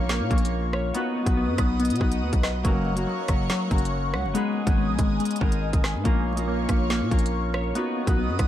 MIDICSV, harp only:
0, 0, Header, 1, 2, 480
1, 0, Start_track
1, 0, Tempo, 425532
1, 1066, Time_signature, 4, 2, 24, 8
1, 9562, End_track
2, 0, Start_track
2, 0, Title_t, "Harp"
2, 0, Program_c, 0, 46
2, 0, Note_on_c, 0, 58, 92
2, 0, Note_on_c, 0, 61, 78
2, 0, Note_on_c, 0, 63, 77
2, 0, Note_on_c, 0, 65, 83
2, 0, Note_on_c, 0, 68, 97
2, 0, Note_on_c, 0, 70, 102
2, 0, Note_on_c, 0, 75, 77
2, 0, Note_on_c, 0, 80, 81
2, 329, Note_off_c, 0, 58, 0
2, 334, Note_on_c, 0, 58, 92
2, 340, Note_off_c, 0, 61, 0
2, 344, Note_on_c, 0, 61, 79
2, 351, Note_off_c, 0, 65, 0
2, 356, Note_on_c, 0, 65, 82
2, 362, Note_off_c, 0, 70, 0
2, 366, Note_on_c, 0, 70, 100
2, 446, Note_off_c, 0, 75, 0
2, 602, Note_off_c, 0, 80, 0
2, 1015, Note_off_c, 0, 68, 0
2, 1054, Note_on_c, 0, 59, 107
2, 1061, Note_off_c, 0, 63, 0
2, 1066, Note_on_c, 0, 63, 107
2, 1077, Note_on_c, 0, 66, 104
2, 1087, Note_on_c, 0, 71, 127
2, 1122, Note_off_c, 0, 58, 0
2, 1122, Note_off_c, 0, 70, 0
2, 1144, Note_off_c, 0, 65, 0
2, 1353, Note_off_c, 0, 59, 0
2, 1359, Note_off_c, 0, 63, 0
2, 1364, Note_off_c, 0, 66, 0
2, 1370, Note_off_c, 0, 71, 0
2, 1406, Note_on_c, 0, 59, 87
2, 1417, Note_on_c, 0, 63, 81
2, 1429, Note_on_c, 0, 66, 80
2, 1440, Note_on_c, 0, 71, 102
2, 2241, Note_off_c, 0, 59, 0
2, 2246, Note_on_c, 0, 59, 88
2, 2253, Note_off_c, 0, 63, 0
2, 2257, Note_on_c, 0, 63, 87
2, 2264, Note_off_c, 0, 66, 0
2, 2268, Note_on_c, 0, 66, 75
2, 2275, Note_off_c, 0, 71, 0
2, 2279, Note_on_c, 0, 71, 100
2, 2971, Note_on_c, 0, 58, 117
2, 2978, Note_off_c, 0, 61, 0
2, 2983, Note_on_c, 0, 61, 106
2, 2989, Note_off_c, 0, 66, 0
2, 2994, Note_on_c, 0, 66, 106
2, 3005, Note_on_c, 0, 70, 127
2, 3039, Note_off_c, 0, 59, 0
2, 3039, Note_off_c, 0, 71, 0
2, 3272, Note_off_c, 0, 58, 0
2, 3277, Note_off_c, 0, 61, 0
2, 3283, Note_off_c, 0, 66, 0
2, 3289, Note_off_c, 0, 70, 0
2, 3330, Note_on_c, 0, 58, 87
2, 3341, Note_on_c, 0, 61, 81
2, 3353, Note_on_c, 0, 66, 83
2, 3363, Note_on_c, 0, 70, 108
2, 4167, Note_off_c, 0, 58, 0
2, 4171, Note_on_c, 0, 58, 81
2, 4178, Note_off_c, 0, 61, 0
2, 4183, Note_on_c, 0, 61, 89
2, 4189, Note_off_c, 0, 66, 0
2, 4194, Note_on_c, 0, 66, 88
2, 4200, Note_off_c, 0, 70, 0
2, 4205, Note_on_c, 0, 70, 90
2, 4889, Note_on_c, 0, 59, 120
2, 4895, Note_off_c, 0, 63, 0
2, 4899, Note_on_c, 0, 63, 103
2, 4911, Note_on_c, 0, 68, 103
2, 4922, Note_on_c, 0, 71, 127
2, 4956, Note_off_c, 0, 58, 0
2, 4956, Note_off_c, 0, 70, 0
2, 5190, Note_off_c, 0, 59, 0
2, 5196, Note_off_c, 0, 63, 0
2, 5202, Note_off_c, 0, 68, 0
2, 5207, Note_off_c, 0, 71, 0
2, 5251, Note_on_c, 0, 59, 89
2, 5262, Note_on_c, 0, 63, 81
2, 5273, Note_on_c, 0, 68, 82
2, 5284, Note_on_c, 0, 71, 96
2, 6084, Note_off_c, 0, 59, 0
2, 6088, Note_on_c, 0, 59, 88
2, 6095, Note_off_c, 0, 63, 0
2, 6099, Note_on_c, 0, 63, 81
2, 6106, Note_off_c, 0, 68, 0
2, 6110, Note_on_c, 0, 68, 86
2, 6121, Note_on_c, 0, 70, 98
2, 6189, Note_off_c, 0, 71, 0
2, 6807, Note_on_c, 0, 58, 114
2, 6814, Note_off_c, 0, 61, 0
2, 6818, Note_on_c, 0, 61, 115
2, 6829, Note_on_c, 0, 65, 97
2, 6836, Note_off_c, 0, 70, 0
2, 6841, Note_on_c, 0, 70, 116
2, 6875, Note_off_c, 0, 59, 0
2, 6896, Note_off_c, 0, 66, 0
2, 7110, Note_off_c, 0, 58, 0
2, 7115, Note_off_c, 0, 61, 0
2, 7120, Note_off_c, 0, 65, 0
2, 7127, Note_off_c, 0, 70, 0
2, 7169, Note_on_c, 0, 58, 91
2, 7180, Note_on_c, 0, 61, 79
2, 7191, Note_on_c, 0, 65, 81
2, 7203, Note_on_c, 0, 70, 100
2, 8008, Note_off_c, 0, 58, 0
2, 8012, Note_on_c, 0, 58, 91
2, 8019, Note_off_c, 0, 61, 0
2, 8023, Note_on_c, 0, 61, 81
2, 8030, Note_off_c, 0, 65, 0
2, 8035, Note_on_c, 0, 65, 82
2, 8041, Note_off_c, 0, 70, 0
2, 8046, Note_on_c, 0, 70, 102
2, 8675, Note_off_c, 0, 68, 0
2, 8735, Note_on_c, 0, 59, 107
2, 8741, Note_off_c, 0, 63, 0
2, 8746, Note_on_c, 0, 63, 112
2, 8756, Note_on_c, 0, 66, 105
2, 8768, Note_on_c, 0, 71, 124
2, 8802, Note_off_c, 0, 58, 0
2, 8802, Note_off_c, 0, 70, 0
2, 8824, Note_off_c, 0, 65, 0
2, 9033, Note_off_c, 0, 59, 0
2, 9039, Note_off_c, 0, 63, 0
2, 9044, Note_off_c, 0, 66, 0
2, 9050, Note_off_c, 0, 71, 0
2, 9086, Note_on_c, 0, 59, 84
2, 9097, Note_on_c, 0, 63, 82
2, 9108, Note_on_c, 0, 66, 78
2, 9119, Note_on_c, 0, 71, 108
2, 9562, Note_off_c, 0, 59, 0
2, 9562, Note_off_c, 0, 61, 0
2, 9562, Note_off_c, 0, 63, 0
2, 9562, Note_off_c, 0, 66, 0
2, 9562, Note_off_c, 0, 71, 0
2, 9562, End_track
0, 0, End_of_file